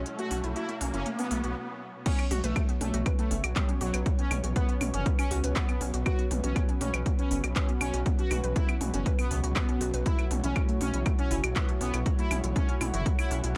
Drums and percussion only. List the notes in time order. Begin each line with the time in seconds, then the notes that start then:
0.06 closed hi-hat
0.19 closed hi-hat
0.31 open hi-hat, mid tom
0.44 closed hi-hat
0.56 closed hi-hat
0.69 closed hi-hat
0.81 open hi-hat, mid tom
0.94 closed hi-hat
1.06 closed hi-hat
1.19 open hi-hat
1.31 open hi-hat
1.44 closed hi-hat
2.06 kick, closed hi-hat, crash
2.19 closed hi-hat, claves
2.31 open hi-hat, mid tom
2.44 closed hi-hat
2.56 kick, closed hi-hat, claves
2.69 closed hi-hat
2.81 open hi-hat, mid tom
2.94 closed hi-hat
3.06 kick, closed hi-hat, claves
3.19 closed hi-hat
3.31 open hi-hat
3.44 closed hi-hat, claves
3.56 kick, clap, closed hi-hat
3.69 closed hi-hat
3.81 open hi-hat
3.94 closed hi-hat, claves
4.06 kick, closed hi-hat
4.19 closed hi-hat
4.31 open hi-hat, mid tom, claves
4.44 closed hi-hat
4.56 kick, closed hi-hat
4.69 closed hi-hat
4.81 open hi-hat, mid tom, claves
4.94 closed hi-hat
5.06 kick, closed hi-hat
5.19 open hi-hat, claves
5.31 open hi-hat
5.44 closed hi-hat
5.56 kick, clap, closed hi-hat
5.69 closed hi-hat, claves
5.81 open hi-hat
5.94 closed hi-hat
6.06 kick, closed hi-hat, claves
6.19 closed hi-hat
6.31 open hi-hat, mid tom
6.44 closed hi-hat
6.56 kick, closed hi-hat, claves
6.69 closed hi-hat
6.81 open hi-hat, mid tom
6.94 closed hi-hat, claves
7.06 kick, closed hi-hat
7.19 closed hi-hat
7.31 open hi-hat
7.44 closed hi-hat, claves
7.56 kick, clap, closed hi-hat
7.69 closed hi-hat
7.81 open hi-hat, claves
7.94 closed hi-hat
8.06 kick, closed hi-hat
8.19 closed hi-hat
8.31 open hi-hat, mid tom, claves
8.44 closed hi-hat
8.56 kick, closed hi-hat
8.69 closed hi-hat, claves
8.81 open hi-hat, mid tom
8.94 closed hi-hat
9.06 kick, closed hi-hat
9.19 open hi-hat, claves
9.31 open hi-hat
9.44 closed hi-hat
9.56 kick, clap, closed hi-hat, claves
9.69 closed hi-hat
9.81 open hi-hat
9.94 closed hi-hat
10.06 kick, closed hi-hat
10.19 closed hi-hat, claves
10.31 open hi-hat, mid tom
10.44 closed hi-hat
10.56 kick, closed hi-hat, claves
10.69 closed hi-hat
10.81 open hi-hat, mid tom
10.94 closed hi-hat
11.06 kick, closed hi-hat, claves
11.19 closed hi-hat
11.31 open hi-hat
11.44 closed hi-hat, claves
11.56 kick, clap, closed hi-hat
11.69 closed hi-hat
11.81 open hi-hat
11.94 closed hi-hat, claves
12.06 kick, closed hi-hat
12.19 closed hi-hat
12.31 open hi-hat, mid tom, claves
12.44 closed hi-hat
12.56 kick, closed hi-hat
12.69 closed hi-hat
12.81 open hi-hat, mid tom, claves
12.94 closed hi-hat
13.06 kick, closed hi-hat
13.19 open hi-hat, claves
13.31 open hi-hat
13.44 closed hi-hat